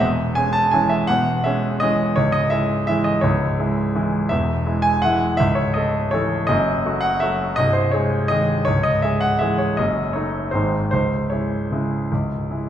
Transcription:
0.00 E1 E2 E5
0.35 G#3 C#4 G#5
0.53 A5
0.71 E3 G#3 C#4 G#5
0.89 E5
1.07 E1 E2 F#5
1.44 G#3 C#4 E5
1.80 E3 G#3 C#4 D#5
2.16 C#1 C#2 C#5
2.32 D#5
2.50 G#3 E4 E5
2.87 E3 G#3 E4 E5
3.04 D#5
3.21 C#1 C#2 C#5
3.59 G#3 E4
3.96 E3 G#3 E4
4.29 E1 E2 E5
4.66 G#3 E4
4.82 G#5
5.02 E3 G#3 E4 F#5
5.37 C#1 C#2 E5
5.55 C#5
5.74 A3 A4 D#5
6.11 E3 A3 A4 C#5
6.47 F#1 F#2 D#5
6.86 A3 F#4
7.01 F#5
7.20 F#3 A3 F#4 E5
7.56 C1 C2 D#5
7.73 C5
7.92 G#3 G#4 C#5
8.28 D#3 G#3 G#4 D#5
8.65 C#1 C#2 C#5
8.83 D#5
9.02 G#3 G#4 E5
9.21 F#5
9.39 E3 G#3 G#4 E5
9.58 C#5
9.77 F#1 F#2 D#5
10.13 A3 D#4 C#5
10.51 G#1 G#2 D#3 G#3 D#4 C5
10.91 C#1 C#2 C5
11.30 G#3 E4 C#5
11.71 C#3 G#3 E4
12.12 C#1 C#2
12.51 G#3 E4

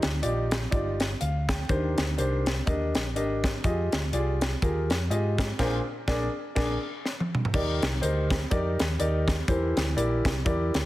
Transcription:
Already playing: D#3
0.03 D2, snare, closed hi-hat
0.22 A#1 D#4 F4 G4 D5, closed hi-hat
0.51 snare, closed hi-hat
0.71 G1 D#4 F4 G4 D5, kick, closed hi-hat
1.00 snare, closed hi-hat
1.20 D2 F5, closed hi-hat
1.49 G5, kick, snare, closed hi-hat
1.69 D#2 D#3 D4 G4 A#4 C5, kick, closed hi-hat
1.98 D2, snare, closed hi-hat
2.18 C2 D4 G4 A#4 C5, closed hi-hat
2.46 snare, closed hi-hat
2.66 D#2 D4 G4 A#4 D#5, kick, closed hi-hat
2.95 A#1, snare, closed hi-hat
3.16 G#1 D4 G4 A#4 D#5, closed hi-hat
3.44 kick, snare, closed hi-hat
3.64 F2 F4 G4 G#4 D#5, kick, closed hi-hat
3.92 D2, snare, closed hi-hat
4.13 C2 F4 G4 G#4 D5, closed hi-hat
4.41 snare, closed hi-hat
4.62 D#2 F4 G4 G#4 A#4, kick, closed hi-hat
4.90 F2, snare, closed hi-hat
5.10 G#2 F4 G4 G#4 D#5, closed hi-hat
5.38 kick, snare, closed hi-hat
5.59 A#1 A#2 D4 G#4 A#4 C5, kick, snare, crash
6.08 A#1 D4 G#4 A#4 D5, kick, snare
6.55 A#1 D4 G#4 A#4 D5, kick, snare, crash
7.06 snare
7.20 high tom
7.35 mid tom
7.45 floor tom
7.54 D#2 D#3 D#4 G4 A#4 D5, kick, crash
7.82 C2, snare, closed hi-hat
8.01 D2 D#4 G4 A#4 C5, closed hi-hat
8.30 kick, snare, closed hi-hat
8.50 F2 D#4 G4 A#4 D5, kick, closed hi-hat
8.79 D#2, snare, closed hi-hat
8.99 D#2 D#4 G4 A#4 D5, closed hi-hat
9.28 kick, snare, closed hi-hat
9.48 E2 E3 E4 G4 A#4 C5, kick, closed hi-hat
9.77 D2, snare, closed hi-hat
9.96 A#1 E4 G4 A#4 D5, closed hi-hat
10.25 C2, kick, snare, closed hi-hat
10.45 E2 E4 G4 A#4 D5, kick, closed hi-hat
10.74 D2, snare, closed hi-hat

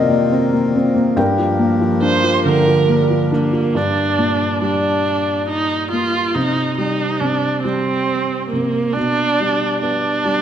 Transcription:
Already playing: F2 C3 D#3 A#3 C4 D#4 F4 A#4 C5 D5 D#5
0.10 A#3
0.31 C4
0.53 A#3
0.75 C4
0.95 A#3
1.16 G2 F3 D4 G4 A#4 G5
1.38 F3
1.59 A#3
1.81 F3
2.02 D4 C5
2.23 F3
2.46 D3 A#4
2.67 F3
2.89 A#3
3.10 F3
3.32 A#3 D4
3.52 F3
3.75 G2 D4
4.18 A#2
4.62 G3 D4
5.49 D#4
5.91 A#3 F4
6.35 C3 D#4
6.77 G3 D#4
7.20 C3 D4
7.63 G3 C4
8.49 C3 A#3
8.94 B2 D4
9.40 G3
9.81 B3 D4
10.25 G3

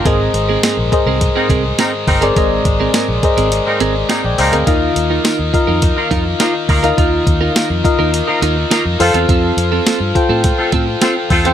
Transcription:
Already playing: F5 A#5
0.04 G#1 G#2 D#3 G#3 C4 G#4 A#4 C5 D#5, kick, closed hi-hat
0.33 G#1 D#3 G#3, muted clean electric guitar stroke, closed hi-hat
0.49 C4 G#4 A#4
0.63 C4 G#4 A#4, snare, closed hi-hat, tambourine
0.77 A#1, muted clean electric guitar stroke
0.92 G#4 A#4 C5 D#5, muted clean electric guitar stroke, kick, closed hi-hat
1.06 C2 C4 G#4 A#4
1.20 G#2 D#3 G#3, muted clean electric guitar stroke, kick, closed hi-hat
1.35 A#3 C4 D#4 G#4 A#4
1.49 C2 C4 G#4 A#4, kick, closed hi-hat
1.64 muted clean electric guitar stroke
1.78 G#2 D#3 G#3 A#3 C4 D#4 G#4 A#4, snare, closed hi-hat, tambourine
1.93 muted clean electric guitar stroke
2.07 G1 A#3 C4 D#4 A#4, muted clean electric guitar stroke, kick, open hi-hat
2.21 C4 G#4 A#4 C5 D5, closed hi-hat
2.36 G#1 G#2 D#3 G#3 C4 G#4 A#4 C5 D#5, kick, closed hi-hat
2.65 G#1 D#3 G#3, muted clean electric guitar stroke, kick, closed hi-hat
2.80 C4 G#4 A#4
2.94 C4 G#4 A#4, snare, closed hi-hat, tambourine
3.08 A#1, muted clean electric guitar stroke
3.23 G#4 A#4 C5 D#5, muted clean electric guitar stroke, kick, closed hi-hat
3.37 G#1 C4 G#4 A#4, closed hi-hat
3.52 G#2 D#3 G#3, closed hi-hat
3.66 A#3 C4 D#4 A#4, muted clean electric guitar stroke
3.80 G#1 C4 G#4 A#4, closed hi-hat
3.95 muted clean electric guitar stroke
4.09 G#2 D#3 G#3 A#3 C4 D#4 G#4 A#4 D#5 G#5, snare, closed hi-hat, tambourine
4.24 A#1 D5 G5, muted clean electric guitar stroke
4.38 C#2 A#3 C4 D#4 A#4 C5 F5, muted clean electric guitar stroke, open hi-hat
4.52 D2 C4 G#4 A#4 D#5, closed hi-hat
4.67 D#2 D#3 A#3 D#4 F4 A#4 D#5 F5, kick, closed hi-hat
4.95 D#2, muted clean electric guitar stroke, closed hi-hat
5.10 D#4 F4 A#4
5.24 D#4 F4 A#4, snare, closed hi-hat, tambourine
5.39 D#2, muted clean electric guitar stroke
5.53 F4 A#4 D#5 F5, muted clean electric guitar stroke, kick, closed hi-hat
5.67 F2 D#4 F4 A#4
5.82 D#3 A#3 D#4, kick, closed hi-hat
5.97 A#3 D#4 F4 A#4, muted clean electric guitar stroke
6.11 F2 D#4 F4 A#4, kick, closed hi-hat
6.25 muted clean electric guitar stroke
6.39 D#3 A#3 D#4 F4 A#4, snare, closed hi-hat, tambourine
6.54 muted clean electric guitar stroke
6.69 D2 A#3 D#4 F4 A#4, muted clean electric guitar stroke, kick, open hi-hat
6.83 D#4 F4 A#4 D#5 F5, closed hi-hat
6.97 D#2 D#3 A#3 D#4 F4 A#4 D#5 F5, kick, closed hi-hat
7.26 D#2, muted clean electric guitar stroke, kick, closed hi-hat
7.41 D#4 F4 A#4
7.55 D#4 F4 A#4, snare, closed hi-hat, tambourine
7.70 F2
7.84 F4 A#4 D#5 F5, muted clean electric guitar stroke, kick, closed hi-hat
7.99 D#2 D#4 F4 A#4
8.12 D#3 A#3 D#4, closed hi-hat
8.28 A#3 D#4 F4 A#4, muted clean electric guitar stroke
8.42 D#2 D#4 F4 A#4, closed hi-hat
8.56 muted clean electric guitar stroke
8.70 D#3 A#3 D#4 F4 A#4, snare, closed hi-hat, tambourine
8.85 F2, muted clean electric guitar stroke
8.98 F2 F3 A3 C4 F4 A4 C5 F5, muted clean electric guitar stroke, open hi-hat
9.14 E2 C4 F4 A4, closed hi-hat
9.29 F2 C4 F4 A4, kick, closed hi-hat
9.57 F2, muted clean electric guitar stroke, closed hi-hat
9.72 C4 F4 A4
9.86 C4 F4 A4, snare, closed hi-hat, tambourine
10.00 G2, muted clean electric guitar stroke
10.15 F4 A4 C5 G5, muted clean electric guitar stroke, kick, closed hi-hat
10.29 A2 C4 F4 A4
10.43 F3 C4 F4, kick, closed hi-hat
10.59 A3 C4 F4 A4, muted clean electric guitar stroke
10.72 A2 C4 F4 A4, kick, closed hi-hat
10.88 muted clean electric guitar stroke
11.01 F3 A3 C4 F4 A4, snare, closed hi-hat, tambourine
11.17 muted clean electric guitar stroke
11.30 E2 A3 C4 F4 A4, muted clean electric guitar stroke, kick, open hi-hat
11.45 C4 F4 A4 C5 G5, closed hi-hat

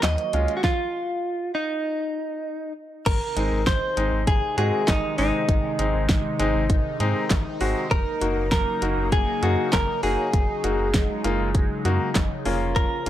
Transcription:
Already playing: D#3 F#3 A#3 F#4
0.03 D#2 D#5, snare, clap, closed hi-hat
0.18 closed hi-hat
0.33 C#2 G#3 C#4 F4, closed hi-hat
0.48 closed hi-hat
0.57 F#4
0.64 F4, kick, snare
1.55 D#4
3.06 G#1 C3 D#3 G#3 D#4 A#4, kick, closed hi-hat, crash
3.36 G#1 G#3 C4 D#4, closed hi-hat
3.52 G#1
3.67 G#1 C5, kick, snare, closed hi-hat
3.97 G#1 G#3 C4 D#4, closed hi-hat
4.12 G#1
4.27 G#1 G#4, kick, closed hi-hat
4.58 G#2 G#3 C4 F#4 G#4, closed hi-hat
4.88 G#1 D#4, kick, snare, clap, closed hi-hat
5.18 G#1 G#3 C4 D#4, open hi-hat
5.49 G#1, kick, closed hi-hat
5.79 G#1 G#3 C4 D#4, closed hi-hat
5.94 G#1
6.09 G#1, kick, snare, closed hi-hat
6.39 G#1 G#3 C4 D#4, closed hi-hat
6.55 G#1
6.70 G#1, kick, closed hi-hat
7.00 G#2 G#3 C4 D#4, closed hi-hat
7.30 G#1, kick, snare, clap, closed hi-hat
7.61 G#1 G#3 C4 F#4, open hi-hat
7.91 F#1 C#3 F#3 A#3 A#4, kick, closed hi-hat
8.21 F#1 A#3 D#4 F#4, closed hi-hat
8.36 F#1
8.52 F#1 A#4, kick, snare, closed hi-hat
8.82 F#1 A#3 D#4 F#4, closed hi-hat
8.97 F#1
9.12 F#1 G#4, kick, closed hi-hat
9.42 F#2 A#3 D#4 F#4 G#4, closed hi-hat
9.73 F#1 A#4, kick, snare, clap, closed hi-hat
10.03 F#1 A#3 D#4 F#4 G#4, open hi-hat
10.33 F#1 G#3, kick, closed hi-hat
10.64 F#1 A#3 D#4 F#4, closed hi-hat
10.79 F#1
10.94 F#1, kick, snare, closed hi-hat
11.24 F#1 A#3 D#4 F4, closed hi-hat
11.39 F#1
11.55 F#1, kick, closed hi-hat
11.85 F#2 A#3 D#4 F#4, closed hi-hat
12.15 F#1, kick, snare, clap, closed hi-hat
12.45 F1 F3 A#3 C#4 F4, open hi-hat
12.76 A#4, kick, closed hi-hat
13.06 F1 A#3 C#4 F4, closed hi-hat

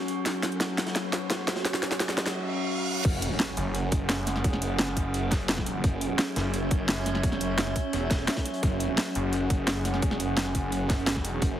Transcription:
Already playing: F#3 C#4 F#4 F#5, riser
0.08 closed hi-hat
0.26 snare, closed hi-hat
0.43 snare, closed hi-hat
0.52 closed hi-hat
0.60 snare, closed hi-hat
0.78 snare, closed hi-hat
0.86 snare, closed hi-hat
0.95 snare, closed hi-hat
1.13 snare, closed hi-hat
1.30 snare, closed hi-hat
1.48 snare, closed hi-hat
1.56 snare, closed hi-hat
1.65 snare, closed hi-hat
1.74 snare
1.83 snare, closed hi-hat
1.91 snare, closed hi-hat
2.00 snare, closed hi-hat
2.09 snare
2.18 snare, closed hi-hat
2.26 snare, closed hi-hat
2.35 reverse cymbal
3.05 F#1 F#3 C#4 G#4, kick, closed hi-hat, crash, impact
3.20 F#5, closed hi-hat
3.40 snare, closed hi-hat
3.54 F#1 F#4, closed hi-hat
3.74 closed hi-hat
3.92 F#1, kick, closed hi-hat
4.09 snare, closed hi-hat
4.26 snare, closed hi-hat
4.36 snare
4.44 E1, kick, closed hi-hat
4.53 snare
4.62 F#1, closed hi-hat
4.79 snare, closed hi-hat
4.88 snare
4.96 F#1, kick, closed hi-hat
5.14 closed hi-hat
5.31 kick, snare, closed hi-hat
5.40 closed hi-hat
5.49 snare, closed hi-hat
5.58 kick, snare
5.66 closed hi-hat
5.84 F#1 C#5, kick, closed hi-hat
6.00 E5, closed hi-hat
6.18 snare, closed hi-hat
6.36 F#1, snare, closed hi-hat
6.54 closed hi-hat
6.71 F#1, kick, closed hi-hat
6.88 snare, closed hi-hat
7.06 snare, closed hi-hat
7.15 snare
7.23 E1, kick, closed hi-hat
7.32 snare
7.40 F#1, closed hi-hat
7.58 snare, closed hi-hat
7.67 snare
7.76 kick, closed hi-hat
7.93 E1, closed hi-hat
8.11 kick, snare, closed hi-hat
8.19 snare
8.28 snare, closed hi-hat
8.36 kick, snare, closed hi-hat
8.45 snare, closed hi-hat
8.54 closed hi-hat
8.63 F#1 G#4, kick, closed hi-hat
8.79 F#5, closed hi-hat
8.98 snare, closed hi-hat
9.15 F#1, closed hi-hat
9.33 closed hi-hat
9.50 F#1, kick, closed hi-hat
9.67 snare, closed hi-hat
9.85 snare, closed hi-hat
9.94 snare
10.02 E1, kick, closed hi-hat
10.11 snare
10.20 F#1, closed hi-hat
10.37 snare, closed hi-hat
10.46 snare
10.55 F#1, kick, closed hi-hat
10.72 closed hi-hat
10.90 kick, snare, closed hi-hat
10.98 closed hi-hat
11.06 snare, closed hi-hat
11.16 F1, kick, snare
11.25 closed hi-hat
11.42 F#1 F#4, kick, closed hi-hat

